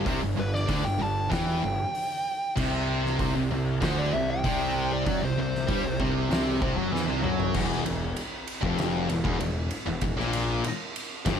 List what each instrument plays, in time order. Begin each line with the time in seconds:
0.06 picked electric bass C2, distorted electric guitar C3, kick, open hi-hat
0.22 picked electric bass G1, distorted electric guitar G2
0.38 picked electric bass G1, distorted electric guitar G2, lead electric guitar B4
0.54 lead electric guitar D5, snare
0.69 picked electric bass D2, distorted electric guitar D3, kick, open hi-hat
0.85 picked electric bass G1, distorted electric guitar G2, lead electric guitar G5
1.01 picked electric bass G1, distorted electric guitar G2, lead electric guitar A5
1.32 picked electric bass E2, distorted electric guitar E3, lead electric guitar G5, kick, snare, open hi-hat
1.64 picked electric bass G1, distorted electric guitar G2
1.95 open hi-hat
2.57 picked electric bass C2, distorted electric guitar C3, kick, crash
3.05 snare
3.19 picked electric bass C2, distorted electric guitar C3, kick, open hi-hat
3.35 picked electric bass C2, distorted electric guitar C3
3.51 picked electric bass C2, distorted electric guitar C3
3.81 picked electric bass D2, distorted electric guitar D3, lead electric guitar C5, kick, snare, open hi-hat
3.99 lead electric guitar D5
4.14 picked electric bass C2, distorted electric guitar C3, lead electric guitar E5
4.30 lead electric guitar G5
4.44 picked electric bass C2, distorted electric guitar C3, kick, open hi-hat
4.93 lead electric guitar D5
5.07 picked electric bass F#2, distorted electric guitar F#3, kick, open hi-hat
5.23 picked electric bass C2, distorted electric guitar C3, lead electric guitar C5
5.38 picked electric bass C2, distorted electric guitar C3, lead electric guitar C5
5.55 snare
5.68 picked electric bass G2, distorted electric guitar G3, kick, open hi-hat
5.84 picked electric bass C2, distorted electric guitar C3
6.00 picked electric bass C2, distorted electric guitar C3, kick
6.30 picked electric bass C2, distorted electric guitar C3, snare, open hi-hat
6.62 picked electric bass C2, distorted electric guitar C3, kick
6.76 picked electric bass F#2, distorted electric guitar F#3
6.92 picked electric bass E2, distorted electric guitar E3, snare
7.08 picked electric bass C2, distorted electric guitar C3
7.23 picked electric bass F#2, distorted electric guitar F#3, mid tom
7.40 floor tom
7.54 picked electric bass E1, distorted electric guitar E2, kick, crash
7.72 snare
7.85 picked electric bass E1, distorted electric guitar E2, ride
8.16 ride
8.47 ride
8.63 picked electric bass F1, distorted electric guitar F2, kick
8.78 snare, ride
9.09 picked electric bass E1, distorted electric guitar E2, ride
9.25 picked electric bass E1, distorted electric guitar E2, kick
9.40 picked electric bass E1, distorted electric guitar E2, ride
9.71 ride
9.86 picked electric bass E1, distorted electric guitar E2
10.01 picked electric bass E1, distorted electric guitar E2, kick, ride
10.17 picked electric bass A#1, distorted electric guitar A#2, snare
10.33 ride
10.63 muted distorted electric guitar stroke, muted picked electric bass stroke, ride
10.96 ride
11.26 picked electric bass G1, distorted electric guitar G2, kick, snare, ride